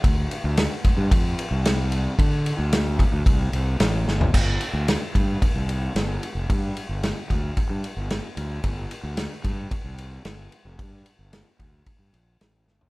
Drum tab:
CC |----------------|----------------|x---------------|----------------|
RD |x-x-x-x-x-x-x-x-|x-x-x-x-x-x-x---|--x-x-x-x-x-x-x-|x-x-x-x-x-x-x-x-|
SD |----o-------o---|----o-------o-o-|----o-------o---|----o-------o---|
FT |----------------|---------------o|----------------|----------------|
BD |o-----o-o-------|o-----o-o-------|o-----o-o-------|o-----o-o-------|

CC |----------------|----------------|
RD |x-x-x-x-x-x-x-x-|x-x-x-x-x-x-x---|
SD |----o-------o---|----o-------o-o-|
FT |----------------|---------------o|
BD |o-----o-o-------|o-----o-o-------|